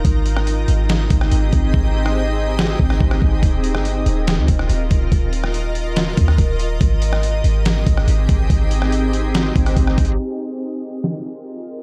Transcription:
Already playing: D#4
0.05 G#1 C4 G4 G#4 D#5, kick, closed hi-hat
0.26 closed hi-hat
0.37 cross-stick
0.47 closed hi-hat
0.68 G#1, closed hi-hat
0.89 snare, closed hi-hat
1.10 G#1, kick, closed hi-hat
1.21 cross-stick
1.31 G#1, closed hi-hat
1.53 G#1, kick, closed hi-hat
1.74 G#1, kick
2.06 cross-stick
2.59 snare
2.79 G#1, kick
2.90 cross-stick
3.00 G#1, kick
3.11 cross-stick
3.22 G#1, kick
3.43 D#1 F4 A#4 D#5, kick, closed hi-hat
3.64 closed hi-hat
3.74 G1, cross-stick
3.85 closed hi-hat
4.06 D#1, closed hi-hat
4.27 snare, closed hi-hat
4.38 D#2
4.48 D#1, kick, closed hi-hat
4.59 cross-stick
4.69 D#1, closed hi-hat
4.91 D#1, kick, closed hi-hat
5.12 D#1, kick, closed hi-hat
5.33 closed hi-hat
5.44 cross-stick
5.54 closed hi-hat
5.75 closed hi-hat
5.96 snare, closed hi-hat
6.17 D#2, kick, closed hi-hat
6.28 cross-stick
6.38 D#1, kick, closed hi-hat
6.59 closed hi-hat
6.81 G#1 C4 D#4 G4 G#4, kick, closed hi-hat
7.02 closed hi-hat
7.13 cross-stick
7.23 closed hi-hat
7.44 G#1, closed hi-hat
7.65 snare, closed hi-hat
7.87 G#1, kick, closed hi-hat
7.97 cross-stick
8.07 G#1, closed hi-hat
8.29 G#1, kick, closed hi-hat
8.50 G#1, kick, closed hi-hat
8.71 closed hi-hat
8.82 cross-stick
8.92 closed hi-hat
9.13 closed hi-hat
9.35 snare, closed hi-hat
9.56 G#1, kick, closed hi-hat
9.66 cross-stick, closed hi-hat
9.77 G#1, kick, closed hi-hat
9.87 cross-stick
9.98 G#1, kick, closed hi-hat
10.05 closed hi-hat
10.12 closed hi-hat
10.19 F4 A#4 D#5
11.04 snare

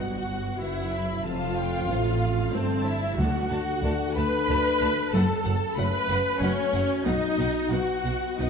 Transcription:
Already playing: G1 B1 G2 B3 F#4 F#5
0.00 B3 F#4 B4 F#5
0.60 F#1 F#2 B3 E4 F#4 B4 E5 F#5
0.92 B5
1.23 F1 F2 C4 F4 A4 F5 A5
1.56 G5
1.88 A1 A2 A3 A4 C5 F5
2.52 G1 G2 A3 C4 A4 C5 A5
2.86 E4 E5
3.17 D2 D3 D4 F#4 A4 F#5 A5
3.50 D2 A5
3.82 D2 A3 A4 D5 A5
4.16 D2 B4 A5 B5
4.48 D2 A3 A4 D5 A5
4.81 D2 A5
5.11 F#1 F#2 C#4 F#4 A4 F#5 A5
5.43 F#1 F#2 F#5
5.77 F#1 F#2 A3 F#4 B4 C#5 F#5 B5
6.08 F#1 F#2 F#5
6.39 F#1 F#2 A3 C#4 F#4 C#5 F#5
6.43 C#5
6.72 F#1 F#2 F#5
7.05 B1 B2 B3 D#4 D#5 F#5
7.38 B1 B2 F#5
7.71 B1 B2 B3 F#4 B4 F#5
8.04 B1 B2 F#5
8.38 B1 B2 B3 D#4 F#4 B4 D#5 F#5

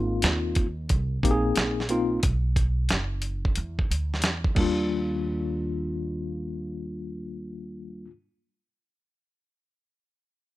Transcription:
Already playing: G#1 A#3 C4 D#4 F4
0.22 D#2, snare, closed hi-hat
0.55 kick, closed hi-hat
0.89 C2, kick, closed hi-hat
1.23 A#1 A#3 C4 D#4 G4, kick, closed hi-hat
1.31 G#4
1.56 A#1, snare, closed hi-hat
1.80 snare
1.89 A#3 C4 D#4 F4, closed hi-hat
2.23 B1, kick, closed hi-hat
2.56 kick, closed hi-hat
2.89 F#1, snare, closed hi-hat
3.22 closed hi-hat
3.45 kick
3.56 E2, closed hi-hat
3.79 kick
3.91 D2, closed hi-hat
4.14 snare
4.22 E2, snare, closed hi-hat
4.44 kick
4.55 D#2 G3 A#3 D4, kick, crash
4.60 F4

